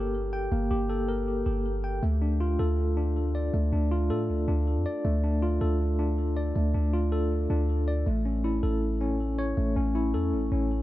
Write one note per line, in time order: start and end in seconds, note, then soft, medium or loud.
0.00 0.48 G1 loud
0.00 0.14 A#3 medium
0.00 0.70 G4 medium
0.00 0.52 A4 medium
0.00 0.71 A#4 medium
0.33 1.46 G5 medium
0.52 0.70 G1 loud
0.52 1.65 A#3 loud
0.71 1.43 G1 loud
0.71 1.45 G4 medium
0.90 2.03 A4 medium
1.08 2.03 A#4 medium
1.46 2.00 G1 loud
1.46 2.03 G4 medium
1.84 2.03 G5 medium
2.03 2.57 D2 loud
2.03 3.16 A3 medium
2.22 2.96 D4 medium
2.40 3.54 F4 medium
2.59 3.50 D2 loud
2.59 3.73 A4 medium
2.97 3.71 D4 medium
3.35 4.48 D5 medium
3.54 3.72 D2 loud
3.54 4.67 A3 medium
3.73 4.12 D2 loud
3.73 4.47 D4 medium
3.91 5.05 F4 medium
4.10 4.31 A2 loud
4.10 5.23 A4 medium
4.29 4.47 D2 medium
4.48 4.78 D2 loud
4.48 5.22 D4 medium
4.77 4.85 F2 loud
4.86 5.99 D5 loud
5.05 5.59 D2 loud
5.05 6.18 A3 loud
5.24 5.98 D4 medium
5.42 6.56 F4 medium
5.61 6.52 D2 loud
5.61 6.74 A4 medium
5.99 6.73 D4 medium
6.37 7.50 D5 medium
6.56 6.74 D2 loud
6.56 7.69 A3 medium
6.74 7.47 D2 loud
6.74 7.49 D4 medium
6.93 8.07 F4 medium
7.12 8.07 A4 loud
7.50 8.04 D2 loud
7.50 8.06 D4 medium
7.88 8.06 D5 medium
8.06 8.61 A1 loud
8.06 9.20 A3 loud
8.25 9.00 C#4 medium
8.44 9.57 E4 medium
8.63 9.54 A1 loud
8.63 9.76 A4 medium
9.01 9.75 C#4 medium
9.39 10.52 C#5 medium
9.57 9.76 A1 loud
9.57 10.71 A3 medium
9.76 10.16 A1 loud
9.76 10.51 C#4 medium
9.95 10.82 E4 medium
10.14 10.34 E2 loud
10.14 10.82 A4 medium
10.33 10.51 A1 medium
10.52 10.82 A1 loud
10.52 10.82 C#4 medium